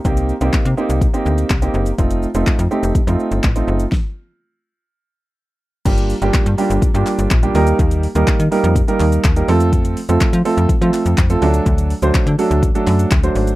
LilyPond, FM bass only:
\new Staff \with { instrumentName = "FM bass" } { \clef bass \time 4/4 \key f \mixolydian \tempo 4 = 124 c,8. c,16 r16 c16 r16 c,8 r16 d,8 c,8 ges,,8 | f,,8. f,,16 r16 f,16 r16 f,,16 f,16 f,16 r16 g,,16 a,,8 ges,,8 | r1 | g,,8. g,,16 r16 g,16 r16 g,,16 r16 g,16 r16 g,,16 bes,,8 ees,8 |
ees,8. ees,16 r16 ees16 r16 f,8 r16 ees,8 ees,8 f,8~ | f,8. f,16 f16 f16 r16 f,16 f16 f16 r16 f,16 f,8 d,8 | d,8. d,16 r16 d16 r16 d,8 r16 fis,8 d,8 aes,,8 | }